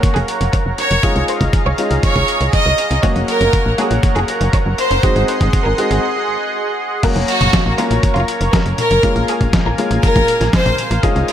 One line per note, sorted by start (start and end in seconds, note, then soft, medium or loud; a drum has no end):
0.00 1.00 F#3 medium
0.00 1.00 A#3 medium
0.00 1.00 C#4 medium
0.00 1.00 F#4 loud
0.00 1.01 A#4 medium
0.00 1.01 C#5 medium
0.00 1.01 F#5 medium
0.00 4.99 A#5 medium
0.00 kick loud
0.00 closed hi-hat medium
0.00 mid tom medium
0.16 0.25 F#1 medium
0.16 0.47 G#4 medium
0.16 closed hi-hat soft
0.28 closed hi-hat medium
0.41 0.50 F#1 medium
0.41 closed hi-hat medium
0.53 0.74 C#5 medium
0.53 kick loud
0.53 closed hi-hat medium
0.66 0.75 F#1 medium
0.78 1.20 C#5 loud
0.78 closed hi-hat medium
0.78 mid tom medium
0.78 high tom medium
0.91 1.00 F#1 medium
0.91 closed hi-hat medium
1.03 1.75 G#3 medium
1.03 1.75 C#4 medium
1.03 1.75 D#4 medium
1.03 1.75 F4 loud
1.03 3.01 G#4 medium
1.03 3.01 D#5 medium
1.03 3.01 F5 medium
1.03 kick loud
1.03 closed hi-hat medium
1.03 mid tom medium
1.16 1.25 C#2 medium
1.16 closed hi-hat soft
1.28 1.60 C5 medium
1.28 closed hi-hat medium
1.41 1.50 C#2 medium
1.41 kick medium
1.41 closed hi-hat medium
1.41 high tom medium
1.53 kick loud
1.53 closed hi-hat medium
1.66 1.75 C#2 medium
1.66 1.97 C#5 loud
1.78 3.00 G#3 medium
1.78 3.00 C#4 medium
1.78 3.00 D#4 medium
1.78 3.00 F4 medium
1.78 closed hi-hat medium
1.78 mid tom medium
1.91 2.00 C#2 medium
1.91 closed hi-hat medium
2.03 2.45 C#5 loud
2.03 kick loud
2.03 closed hi-hat medium
2.03 mid tom medium
2.16 2.25 C#2 medium
2.16 kick medium
2.16 closed hi-hat soft
2.16 high tom medium
2.28 closed hi-hat medium
2.41 2.50 C#2 medium
2.41 closed hi-hat medium
2.41 mid tom medium
2.53 2.95 D#5 loud
2.53 kick loud
2.53 closed hi-hat medium
2.66 2.75 C#2 medium
2.66 high tom medium
2.78 closed hi-hat medium
2.78 mid tom medium
2.91 3.00 C#2 medium
2.91 closed hi-hat medium
3.03 3.75 F#3 medium
3.03 3.75 A#3 medium
3.03 3.75 C#4 medium
3.03 3.75 F#4 loud
3.03 5.01 A#4 medium
3.03 3.24 C#5 loud
3.03 5.01 C#5 medium
3.03 5.01 F#5 medium
3.03 kick loud
3.03 closed hi-hat medium
3.03 mid tom medium
3.16 3.25 F#1 medium
3.16 closed hi-hat soft
3.28 3.70 A#4 loud
3.28 closed hi-hat medium
3.28 mid tom medium
3.41 3.50 F#1 medium
3.41 closed hi-hat medium
3.41 high tom medium
3.53 kick loud
3.53 closed hi-hat medium
3.53 mid tom medium
3.66 3.75 A#1 medium
3.78 5.00 F#3 medium
3.78 5.00 A#3 medium
3.78 5.00 C#4 medium
3.78 5.00 F#4 loud
3.78 4.10 G#4 loud
3.78 closed hi-hat medium
3.78 mid tom medium
3.91 4.00 A#1 medium
3.91 closed hi-hat medium
4.03 kick loud
4.03 closed hi-hat medium
4.03 mid tom medium
4.16 4.25 F#1 medium
4.16 4.47 G#4 medium
4.16 closed hi-hat soft
4.28 closed hi-hat medium
4.28 mid tom medium
4.41 4.50 F#1 medium
4.41 closed hi-hat medium
4.53 4.74 C#5 medium
4.53 kick loud
4.53 closed hi-hat medium
4.53 mid tom medium
4.66 4.75 F#1 medium
4.78 5.20 C5 loud
4.78 closed hi-hat medium
4.78 mid tom medium
4.78 high tom medium
4.91 5.00 F#1 medium
4.91 closed hi-hat medium
5.03 5.75 G#3 medium
5.03 5.75 C4 medium
5.03 5.75 D#4 medium
5.03 5.75 F#4 loud
5.03 7.01 G#4 medium
5.03 7.01 D#5 medium
5.03 7.01 F#5 medium
5.03 7.01 C6 medium
5.03 kick loud
5.03 closed hi-hat medium
5.03 mid tom medium
5.16 5.25 G#1 medium
5.16 closed hi-hat soft
5.16 mid tom medium
5.28 5.60 C5 medium
5.28 closed hi-hat medium
5.28 mid tom medium
5.41 5.50 G#1 medium
5.41 kick medium
5.41 closed hi-hat medium
5.41 mid tom medium
5.41 high tom medium
5.53 kick loud
5.53 closed hi-hat medium
5.53 mid tom loud
5.66 5.75 G#1 medium
5.66 5.97 A#4 medium
5.66 mid tom medium
5.78 6.03 G#3 medium
5.78 6.03 C4 medium
5.78 6.03 D#4 medium
5.78 6.03 F#4 loud
5.78 closed hi-hat medium
5.78 mid tom loud
5.91 6.00 G#1 medium
5.91 closed hi-hat medium
5.91 mid tom medium
7.03 7.75 F#3 medium
7.03 7.75 A#3 medium
7.03 7.75 C#4 medium
7.03 7.75 F#4 loud
7.03 10.99 A#4 medium
7.03 7.24 A#4 loud
7.03 9.01 C#5 medium
7.03 9.01 A#5 medium
7.03 kick loud
7.03 closed hi-hat medium
7.03 crash loud
7.16 7.25 F#1 medium
7.16 closed hi-hat soft
7.28 7.70 F#4 loud
7.28 closed hi-hat medium
7.41 7.50 F#1 medium
7.41 closed hi-hat medium
7.41 high tom medium
7.53 kick loud
7.53 snare loud
7.53 closed hi-hat medium
7.66 7.75 A#1 medium
7.78 9.00 F#3 medium
7.78 9.00 A#3 medium
7.78 9.00 C#4 medium
7.78 8.10 F4 loud
7.78 9.00 A#4 loud
7.78 closed hi-hat medium
7.91 8.00 A#1 medium
7.91 closed hi-hat medium
8.03 kick loud
8.03 closed hi-hat medium
8.16 8.25 F#1 medium
8.16 8.47 F4 medium
8.16 closed hi-hat soft
8.28 closed hi-hat medium
8.41 8.50 F#1 medium
8.41 closed hi-hat medium
8.53 8.74 A#4 medium
8.53 kick loud
8.53 snare loud
8.53 closed hi-hat medium
8.66 8.75 F#1 medium
8.66 closed hi-hat soft
8.78 9.20 A#4 loud
8.78 closed hi-hat medium
8.78 high tom medium
8.91 9.00 F#1 medium
8.91 closed hi-hat medium
9.03 9.75 G#3 medium
9.03 9.75 A#3 medium
9.03 9.75 C#4 medium
9.03 9.75 F4 loud
9.03 11.32 F5 medium
9.03 11.01 G#5 medium
9.03 kick loud
9.03 closed hi-hat medium
9.16 9.25 A#1 medium
9.16 closed hi-hat soft
9.28 9.60 G#4 loud
9.28 closed hi-hat medium
9.41 9.50 A#1 medium
9.41 kick medium
9.41 closed hi-hat medium
9.41 high tom medium
9.53 kick loud
9.53 snare loud
9.53 closed hi-hat medium
9.66 9.75 A#1 medium
9.66 9.97 A#4 loud
9.78 11.00 G#3 medium
9.78 11.00 A#3 medium
9.78 11.00 C#4 medium
9.78 11.00 F4 loud
9.78 closed hi-hat medium
9.91 10.00 A#1 medium
9.91 closed hi-hat medium
10.03 10.45 A#4 loud
10.03 kick loud
10.03 closed hi-hat medium
10.16 10.25 A#1 medium
10.16 kick medium
10.16 closed hi-hat soft
10.16 high tom medium
10.28 closed hi-hat medium
10.41 10.50 A#1 medium
10.41 snare soft
10.41 closed hi-hat medium
10.53 10.95 C5 loud
10.53 kick loud
10.53 snare loud
10.53 closed hi-hat medium
10.66 10.75 A#1 medium
10.66 closed hi-hat soft
10.66 high tom medium
10.78 closed hi-hat medium
10.91 11.00 A#1 medium
10.91 closed hi-hat medium
11.03 11.32 G#3 medium
11.03 11.32 C#4 medium
11.03 11.32 D#4 medium
11.03 11.32 F4 loud
11.03 11.24 G#4 loud
11.03 11.32 C#5 medium
11.03 11.32 G#5 medium
11.03 11.32 D#6 medium
11.03 kick loud
11.03 closed hi-hat medium
11.16 11.25 C#2 medium
11.16 closed hi-hat soft
11.28 11.32 F4 loud
11.28 closed hi-hat medium